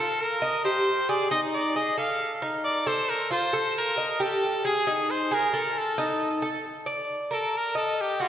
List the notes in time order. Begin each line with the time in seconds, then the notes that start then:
Already playing: A4
0.00 A4
0.21 A#4
0.42 D#5
0.65 G4 C5
1.09 G#4 D5
1.31 D#4 D#5
1.55 D5
1.76 G#4 D#5
1.98 A4 F5
2.42 D#4
2.65 D5
2.86 A4 C5
3.10 A#4
3.31 F4 C5
3.53 A4
3.78 A#4
3.97 D#5
4.20 G4 A4
4.65 G#4
4.87 D#4
5.11 C5
5.31 G#4 A#4
5.54 A4
5.78 A4
5.98 D#4
6.42 A4
6.86 D5
7.31 A4 A#4
7.57 A#4
7.75 A4 D#5
8.01 G4
8.20 F4 F#4